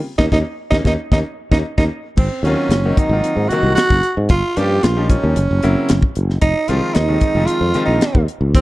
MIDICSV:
0, 0, Header, 1, 6, 480
1, 0, Start_track
1, 0, Tempo, 530316
1, 50, Time_signature, 4, 2, 24, 8
1, 7793, End_track
2, 0, Start_track
2, 0, Title_t, "Tenor saxophone"
2, 0, Program_c, 0, 66
2, 164, Note_on_c, 0, 63, 90
2, 223, Note_off_c, 0, 63, 0
2, 293, Note_on_c, 0, 63, 91
2, 350, Note_off_c, 0, 63, 0
2, 637, Note_on_c, 0, 63, 93
2, 698, Note_off_c, 0, 63, 0
2, 787, Note_on_c, 0, 63, 86
2, 841, Note_off_c, 0, 63, 0
2, 1018, Note_on_c, 0, 63, 82
2, 1074, Note_off_c, 0, 63, 0
2, 1377, Note_on_c, 0, 63, 75
2, 1432, Note_off_c, 0, 63, 0
2, 1610, Note_on_c, 0, 63, 87
2, 1667, Note_off_c, 0, 63, 0
2, 1971, Note_on_c, 0, 60, 78
2, 2194, Note_off_c, 0, 60, 0
2, 2208, Note_on_c, 0, 61, 81
2, 2698, Note_on_c, 0, 63, 76
2, 2711, Note_off_c, 0, 61, 0
2, 3159, Note_on_c, 0, 66, 87
2, 3172, Note_off_c, 0, 63, 0
2, 3391, Note_off_c, 0, 66, 0
2, 3396, Note_on_c, 0, 66, 107
2, 3739, Note_off_c, 0, 66, 0
2, 3896, Note_on_c, 0, 65, 100
2, 4137, Note_on_c, 0, 67, 96
2, 4151, Note_off_c, 0, 65, 0
2, 4377, Note_on_c, 0, 65, 92
2, 4390, Note_off_c, 0, 67, 0
2, 4613, Note_off_c, 0, 65, 0
2, 4618, Note_on_c, 0, 61, 72
2, 5538, Note_off_c, 0, 61, 0
2, 5810, Note_on_c, 0, 63, 106
2, 6051, Note_on_c, 0, 65, 94
2, 6065, Note_off_c, 0, 63, 0
2, 6282, Note_on_c, 0, 63, 97
2, 6296, Note_off_c, 0, 65, 0
2, 6753, Note_on_c, 0, 65, 100
2, 6767, Note_off_c, 0, 63, 0
2, 7103, Note_off_c, 0, 65, 0
2, 7109, Note_on_c, 0, 63, 73
2, 7453, Note_off_c, 0, 63, 0
2, 7742, Note_on_c, 0, 60, 79
2, 7793, Note_off_c, 0, 60, 0
2, 7793, End_track
3, 0, Start_track
3, 0, Title_t, "Grand piano"
3, 0, Program_c, 1, 0
3, 170, Note_on_c, 1, 63, 87
3, 172, Note_on_c, 1, 61, 85
3, 173, Note_on_c, 1, 58, 91
3, 246, Note_off_c, 1, 63, 0
3, 247, Note_off_c, 1, 61, 0
3, 248, Note_off_c, 1, 58, 0
3, 291, Note_on_c, 1, 63, 79
3, 293, Note_on_c, 1, 61, 85
3, 294, Note_on_c, 1, 58, 82
3, 368, Note_off_c, 1, 63, 0
3, 369, Note_off_c, 1, 61, 0
3, 370, Note_off_c, 1, 58, 0
3, 660, Note_on_c, 1, 63, 88
3, 665, Note_on_c, 1, 61, 92
3, 666, Note_on_c, 1, 58, 94
3, 732, Note_off_c, 1, 63, 0
3, 735, Note_off_c, 1, 61, 0
3, 736, Note_off_c, 1, 58, 0
3, 778, Note_on_c, 1, 61, 85
3, 782, Note_on_c, 1, 58, 81
3, 783, Note_on_c, 1, 63, 84
3, 852, Note_off_c, 1, 61, 0
3, 855, Note_off_c, 1, 58, 0
3, 855, Note_off_c, 1, 63, 0
3, 1019, Note_on_c, 1, 58, 78
3, 1022, Note_on_c, 1, 61, 77
3, 1023, Note_on_c, 1, 63, 84
3, 1093, Note_off_c, 1, 58, 0
3, 1095, Note_off_c, 1, 61, 0
3, 1096, Note_off_c, 1, 63, 0
3, 1376, Note_on_c, 1, 61, 80
3, 1378, Note_on_c, 1, 63, 82
3, 1379, Note_on_c, 1, 58, 86
3, 1450, Note_off_c, 1, 61, 0
3, 1451, Note_off_c, 1, 63, 0
3, 1452, Note_off_c, 1, 58, 0
3, 1624, Note_on_c, 1, 61, 77
3, 1628, Note_on_c, 1, 58, 82
3, 1628, Note_on_c, 1, 63, 72
3, 1695, Note_off_c, 1, 61, 0
3, 1697, Note_off_c, 1, 58, 0
3, 1697, Note_off_c, 1, 63, 0
3, 2218, Note_on_c, 1, 51, 78
3, 2220, Note_on_c, 1, 65, 88
3, 2222, Note_on_c, 1, 54, 73
3, 2222, Note_on_c, 1, 58, 74
3, 2224, Note_on_c, 1, 60, 73
3, 2441, Note_off_c, 1, 51, 0
3, 2442, Note_off_c, 1, 65, 0
3, 2443, Note_off_c, 1, 54, 0
3, 2443, Note_off_c, 1, 58, 0
3, 2443, Note_off_c, 1, 60, 0
3, 2460, Note_on_c, 1, 65, 15
3, 2462, Note_on_c, 1, 60, 14
3, 2513, Note_off_c, 1, 65, 0
3, 2514, Note_off_c, 1, 60, 0
3, 2582, Note_on_c, 1, 51, 69
3, 2582, Note_on_c, 1, 60, 62
3, 2584, Note_on_c, 1, 58, 66
3, 2586, Note_on_c, 1, 54, 65
3, 2591, Note_on_c, 1, 63, 78
3, 2803, Note_off_c, 1, 51, 0
3, 2803, Note_off_c, 1, 60, 0
3, 2804, Note_off_c, 1, 58, 0
3, 2805, Note_off_c, 1, 54, 0
3, 2808, Note_off_c, 1, 63, 0
3, 2828, Note_on_c, 1, 51, 62
3, 2829, Note_on_c, 1, 54, 53
3, 2829, Note_on_c, 1, 58, 56
3, 2831, Note_on_c, 1, 60, 57
3, 2832, Note_on_c, 1, 65, 72
3, 3158, Note_off_c, 1, 51, 0
3, 3159, Note_off_c, 1, 54, 0
3, 3159, Note_off_c, 1, 58, 0
3, 3160, Note_off_c, 1, 60, 0
3, 3160, Note_off_c, 1, 65, 0
3, 3187, Note_on_c, 1, 58, 79
3, 3188, Note_on_c, 1, 51, 75
3, 3188, Note_on_c, 1, 54, 81
3, 3188, Note_on_c, 1, 60, 77
3, 3191, Note_on_c, 1, 63, 94
3, 3405, Note_off_c, 1, 58, 0
3, 3406, Note_off_c, 1, 51, 0
3, 3406, Note_off_c, 1, 54, 0
3, 3406, Note_off_c, 1, 60, 0
3, 3407, Note_off_c, 1, 63, 0
3, 3433, Note_on_c, 1, 60, 16
3, 3439, Note_on_c, 1, 66, 17
3, 3480, Note_off_c, 1, 60, 0
3, 3483, Note_off_c, 1, 66, 0
3, 3787, Note_on_c, 1, 60, 14
3, 3793, Note_on_c, 1, 63, 18
3, 3836, Note_off_c, 1, 60, 0
3, 3839, Note_off_c, 1, 63, 0
3, 4134, Note_on_c, 1, 53, 80
3, 4135, Note_on_c, 1, 65, 91
3, 4137, Note_on_c, 1, 55, 76
3, 4138, Note_on_c, 1, 61, 81
3, 4139, Note_on_c, 1, 58, 76
3, 4359, Note_off_c, 1, 53, 0
3, 4359, Note_off_c, 1, 65, 0
3, 4360, Note_off_c, 1, 55, 0
3, 4361, Note_off_c, 1, 58, 0
3, 4361, Note_off_c, 1, 61, 0
3, 4383, Note_on_c, 1, 61, 16
3, 4388, Note_on_c, 1, 67, 17
3, 4435, Note_off_c, 1, 61, 0
3, 4438, Note_off_c, 1, 67, 0
3, 4490, Note_on_c, 1, 58, 63
3, 4494, Note_on_c, 1, 53, 73
3, 4494, Note_on_c, 1, 55, 59
3, 4498, Note_on_c, 1, 61, 68
3, 4499, Note_on_c, 1, 63, 79
3, 4717, Note_off_c, 1, 58, 0
3, 4719, Note_off_c, 1, 53, 0
3, 4719, Note_off_c, 1, 55, 0
3, 4721, Note_off_c, 1, 61, 0
3, 4722, Note_off_c, 1, 63, 0
3, 4734, Note_on_c, 1, 53, 60
3, 4734, Note_on_c, 1, 61, 53
3, 4735, Note_on_c, 1, 55, 63
3, 4737, Note_on_c, 1, 58, 61
3, 4738, Note_on_c, 1, 63, 64
3, 4851, Note_off_c, 1, 53, 0
3, 4851, Note_off_c, 1, 61, 0
3, 4852, Note_off_c, 1, 55, 0
3, 4853, Note_off_c, 1, 58, 0
3, 4853, Note_off_c, 1, 63, 0
3, 5098, Note_on_c, 1, 54, 77
3, 5099, Note_on_c, 1, 60, 82
3, 5099, Note_on_c, 1, 64, 99
3, 5101, Note_on_c, 1, 49, 85
3, 5101, Note_on_c, 1, 58, 79
3, 5321, Note_off_c, 1, 54, 0
3, 5321, Note_off_c, 1, 60, 0
3, 5321, Note_off_c, 1, 64, 0
3, 5322, Note_off_c, 1, 49, 0
3, 5322, Note_off_c, 1, 58, 0
3, 5341, Note_on_c, 1, 60, 18
3, 5343, Note_on_c, 1, 64, 19
3, 5394, Note_off_c, 1, 60, 0
3, 5395, Note_off_c, 1, 64, 0
3, 5699, Note_on_c, 1, 60, 15
3, 5704, Note_on_c, 1, 63, 17
3, 5752, Note_off_c, 1, 60, 0
3, 5755, Note_off_c, 1, 63, 0
3, 6050, Note_on_c, 1, 56, 77
3, 6050, Note_on_c, 1, 65, 85
3, 6051, Note_on_c, 1, 60, 77
3, 6052, Note_on_c, 1, 51, 86
3, 6056, Note_on_c, 1, 53, 81
3, 6277, Note_off_c, 1, 56, 0
3, 6277, Note_off_c, 1, 65, 0
3, 6278, Note_off_c, 1, 51, 0
3, 6278, Note_off_c, 1, 60, 0
3, 6280, Note_off_c, 1, 53, 0
3, 6296, Note_on_c, 1, 60, 16
3, 6302, Note_on_c, 1, 65, 18
3, 6352, Note_off_c, 1, 60, 0
3, 6355, Note_off_c, 1, 65, 0
3, 6412, Note_on_c, 1, 51, 73
3, 6412, Note_on_c, 1, 53, 62
3, 6414, Note_on_c, 1, 60, 63
3, 6415, Note_on_c, 1, 56, 64
3, 6415, Note_on_c, 1, 63, 77
3, 6638, Note_off_c, 1, 53, 0
3, 6639, Note_off_c, 1, 51, 0
3, 6639, Note_off_c, 1, 60, 0
3, 6640, Note_off_c, 1, 56, 0
3, 6640, Note_off_c, 1, 63, 0
3, 6655, Note_on_c, 1, 56, 58
3, 6657, Note_on_c, 1, 53, 65
3, 6657, Note_on_c, 1, 65, 78
3, 6658, Note_on_c, 1, 51, 64
3, 6659, Note_on_c, 1, 60, 58
3, 6992, Note_off_c, 1, 56, 0
3, 6993, Note_off_c, 1, 51, 0
3, 6993, Note_off_c, 1, 53, 0
3, 6993, Note_off_c, 1, 65, 0
3, 6994, Note_off_c, 1, 60, 0
3, 7012, Note_on_c, 1, 51, 83
3, 7012, Note_on_c, 1, 53, 78
3, 7013, Note_on_c, 1, 56, 76
3, 7015, Note_on_c, 1, 65, 96
3, 7018, Note_on_c, 1, 60, 82
3, 7238, Note_off_c, 1, 51, 0
3, 7238, Note_off_c, 1, 53, 0
3, 7239, Note_off_c, 1, 56, 0
3, 7240, Note_off_c, 1, 65, 0
3, 7241, Note_off_c, 1, 60, 0
3, 7260, Note_on_c, 1, 65, 17
3, 7262, Note_on_c, 1, 60, 15
3, 7314, Note_off_c, 1, 60, 0
3, 7314, Note_off_c, 1, 65, 0
3, 7620, Note_on_c, 1, 60, 15
3, 7622, Note_on_c, 1, 65, 18
3, 7673, Note_off_c, 1, 60, 0
3, 7674, Note_off_c, 1, 65, 0
3, 7793, End_track
4, 0, Start_track
4, 0, Title_t, "Fretless electric bass"
4, 0, Program_c, 2, 35
4, 167, Note_on_c, 2, 39, 79
4, 257, Note_off_c, 2, 39, 0
4, 291, Note_on_c, 2, 39, 81
4, 381, Note_off_c, 2, 39, 0
4, 650, Note_on_c, 2, 39, 89
4, 738, Note_off_c, 2, 39, 0
4, 764, Note_on_c, 2, 39, 80
4, 857, Note_off_c, 2, 39, 0
4, 1010, Note_on_c, 2, 39, 76
4, 1101, Note_off_c, 2, 39, 0
4, 1370, Note_on_c, 2, 39, 84
4, 1459, Note_off_c, 2, 39, 0
4, 1611, Note_on_c, 2, 39, 84
4, 1699, Note_off_c, 2, 39, 0
4, 1964, Note_on_c, 2, 32, 84
4, 2063, Note_off_c, 2, 32, 0
4, 2198, Note_on_c, 2, 39, 82
4, 2299, Note_off_c, 2, 39, 0
4, 2436, Note_on_c, 2, 30, 87
4, 2632, Note_off_c, 2, 30, 0
4, 2800, Note_on_c, 2, 32, 82
4, 2898, Note_off_c, 2, 32, 0
4, 3046, Note_on_c, 2, 44, 82
4, 3142, Note_off_c, 2, 44, 0
4, 3285, Note_on_c, 2, 36, 82
4, 3381, Note_off_c, 2, 36, 0
4, 3531, Note_on_c, 2, 30, 79
4, 3625, Note_off_c, 2, 30, 0
4, 3776, Note_on_c, 2, 44, 79
4, 3889, Note_on_c, 2, 31, 95
4, 3902, Note_off_c, 2, 44, 0
4, 3986, Note_off_c, 2, 31, 0
4, 4137, Note_on_c, 2, 43, 91
4, 4325, Note_off_c, 2, 43, 0
4, 4377, Note_on_c, 2, 34, 85
4, 4661, Note_off_c, 2, 34, 0
4, 4739, Note_on_c, 2, 39, 85
4, 4830, Note_off_c, 2, 39, 0
4, 4860, Note_on_c, 2, 30, 92
4, 4952, Note_off_c, 2, 30, 0
4, 4985, Note_on_c, 2, 30, 87
4, 5074, Note_off_c, 2, 30, 0
4, 5110, Note_on_c, 2, 30, 86
4, 5198, Note_off_c, 2, 30, 0
4, 5347, Note_on_c, 2, 30, 90
4, 5437, Note_off_c, 2, 30, 0
4, 5583, Note_on_c, 2, 30, 78
4, 5768, Note_off_c, 2, 30, 0
4, 5813, Note_on_c, 2, 29, 94
4, 5909, Note_off_c, 2, 29, 0
4, 6057, Note_on_c, 2, 36, 92
4, 6151, Note_off_c, 2, 36, 0
4, 6300, Note_on_c, 2, 39, 94
4, 6487, Note_off_c, 2, 39, 0
4, 6652, Note_on_c, 2, 29, 84
4, 6746, Note_off_c, 2, 29, 0
4, 6887, Note_on_c, 2, 41, 80
4, 6983, Note_off_c, 2, 41, 0
4, 7129, Note_on_c, 2, 34, 74
4, 7224, Note_off_c, 2, 34, 0
4, 7377, Note_on_c, 2, 39, 74
4, 7469, Note_off_c, 2, 39, 0
4, 7609, Note_on_c, 2, 37, 77
4, 7730, Note_off_c, 2, 37, 0
4, 7730, Note_on_c, 2, 39, 102
4, 7793, Note_off_c, 2, 39, 0
4, 7793, End_track
5, 0, Start_track
5, 0, Title_t, "Muted fretless electric bass strokes"
5, 3168, Note_on_c, 9, 29, 33
5, 3259, Note_off_c, 9, 29, 0
5, 3412, Note_on_c, 9, 29, 35
5, 3503, Note_off_c, 9, 29, 0
5, 7014, Note_on_c, 9, 29, 32
5, 7105, Note_off_c, 9, 29, 0
5, 7248, Note_on_c, 9, 29, 34
5, 7339, Note_off_c, 9, 29, 0
5, 7793, End_track
6, 0, Start_track
6, 0, Title_t, "Drums"
6, 170, Note_on_c, 9, 36, 89
6, 176, Note_on_c, 9, 38, 89
6, 261, Note_off_c, 9, 36, 0
6, 267, Note_off_c, 9, 38, 0
6, 289, Note_on_c, 9, 36, 83
6, 295, Note_on_c, 9, 38, 79
6, 379, Note_off_c, 9, 36, 0
6, 385, Note_off_c, 9, 38, 0
6, 651, Note_on_c, 9, 36, 80
6, 662, Note_on_c, 9, 38, 91
6, 741, Note_off_c, 9, 36, 0
6, 753, Note_off_c, 9, 38, 0
6, 770, Note_on_c, 9, 36, 87
6, 779, Note_on_c, 9, 38, 81
6, 861, Note_off_c, 9, 36, 0
6, 869, Note_off_c, 9, 38, 0
6, 1011, Note_on_c, 9, 36, 80
6, 1019, Note_on_c, 9, 38, 79
6, 1101, Note_off_c, 9, 36, 0
6, 1110, Note_off_c, 9, 38, 0
6, 1372, Note_on_c, 9, 36, 82
6, 1384, Note_on_c, 9, 38, 84
6, 1463, Note_off_c, 9, 36, 0
6, 1474, Note_off_c, 9, 38, 0
6, 1611, Note_on_c, 9, 36, 85
6, 1620, Note_on_c, 9, 38, 83
6, 1701, Note_off_c, 9, 36, 0
6, 1710, Note_off_c, 9, 38, 0
6, 1968, Note_on_c, 9, 49, 85
6, 1969, Note_on_c, 9, 36, 102
6, 2058, Note_off_c, 9, 49, 0
6, 2060, Note_off_c, 9, 36, 0
6, 2215, Note_on_c, 9, 42, 52
6, 2306, Note_off_c, 9, 42, 0
6, 2449, Note_on_c, 9, 42, 78
6, 2459, Note_on_c, 9, 38, 96
6, 2539, Note_off_c, 9, 42, 0
6, 2549, Note_off_c, 9, 38, 0
6, 2691, Note_on_c, 9, 36, 81
6, 2692, Note_on_c, 9, 42, 56
6, 2782, Note_off_c, 9, 36, 0
6, 2783, Note_off_c, 9, 42, 0
6, 2931, Note_on_c, 9, 42, 66
6, 3022, Note_off_c, 9, 42, 0
6, 3172, Note_on_c, 9, 42, 49
6, 3263, Note_off_c, 9, 42, 0
6, 3411, Note_on_c, 9, 42, 81
6, 3421, Note_on_c, 9, 38, 107
6, 3501, Note_off_c, 9, 42, 0
6, 3511, Note_off_c, 9, 38, 0
6, 3533, Note_on_c, 9, 36, 86
6, 3546, Note_on_c, 9, 38, 35
6, 3624, Note_off_c, 9, 36, 0
6, 3636, Note_off_c, 9, 38, 0
6, 3649, Note_on_c, 9, 42, 49
6, 3740, Note_off_c, 9, 42, 0
6, 3883, Note_on_c, 9, 42, 73
6, 3890, Note_on_c, 9, 36, 109
6, 3973, Note_off_c, 9, 42, 0
6, 3981, Note_off_c, 9, 36, 0
6, 4133, Note_on_c, 9, 42, 58
6, 4224, Note_off_c, 9, 42, 0
6, 4372, Note_on_c, 9, 42, 73
6, 4382, Note_on_c, 9, 38, 107
6, 4463, Note_off_c, 9, 42, 0
6, 4473, Note_off_c, 9, 38, 0
6, 4611, Note_on_c, 9, 42, 60
6, 4613, Note_on_c, 9, 36, 81
6, 4701, Note_off_c, 9, 42, 0
6, 4704, Note_off_c, 9, 36, 0
6, 4852, Note_on_c, 9, 42, 74
6, 4943, Note_off_c, 9, 42, 0
6, 5092, Note_on_c, 9, 42, 53
6, 5183, Note_off_c, 9, 42, 0
6, 5328, Note_on_c, 9, 42, 90
6, 5338, Note_on_c, 9, 38, 120
6, 5419, Note_off_c, 9, 42, 0
6, 5429, Note_off_c, 9, 38, 0
6, 5453, Note_on_c, 9, 36, 83
6, 5544, Note_off_c, 9, 36, 0
6, 5570, Note_on_c, 9, 42, 61
6, 5661, Note_off_c, 9, 42, 0
6, 5701, Note_on_c, 9, 38, 32
6, 5792, Note_off_c, 9, 38, 0
6, 5806, Note_on_c, 9, 42, 74
6, 5811, Note_on_c, 9, 36, 103
6, 5897, Note_off_c, 9, 42, 0
6, 5901, Note_off_c, 9, 36, 0
6, 6046, Note_on_c, 9, 42, 63
6, 6137, Note_off_c, 9, 42, 0
6, 6288, Note_on_c, 9, 42, 78
6, 6298, Note_on_c, 9, 38, 101
6, 6378, Note_off_c, 9, 42, 0
6, 6388, Note_off_c, 9, 38, 0
6, 6523, Note_on_c, 9, 42, 61
6, 6530, Note_on_c, 9, 36, 77
6, 6614, Note_off_c, 9, 42, 0
6, 6620, Note_off_c, 9, 36, 0
6, 6766, Note_on_c, 9, 42, 78
6, 6857, Note_off_c, 9, 42, 0
6, 7006, Note_on_c, 9, 42, 51
6, 7097, Note_off_c, 9, 42, 0
6, 7251, Note_on_c, 9, 42, 77
6, 7261, Note_on_c, 9, 38, 111
6, 7342, Note_off_c, 9, 42, 0
6, 7352, Note_off_c, 9, 38, 0
6, 7375, Note_on_c, 9, 36, 91
6, 7466, Note_off_c, 9, 36, 0
6, 7497, Note_on_c, 9, 42, 55
6, 7588, Note_off_c, 9, 42, 0
6, 7735, Note_on_c, 9, 36, 109
6, 7739, Note_on_c, 9, 42, 76
6, 7793, Note_off_c, 9, 36, 0
6, 7793, Note_off_c, 9, 42, 0
6, 7793, End_track
0, 0, End_of_file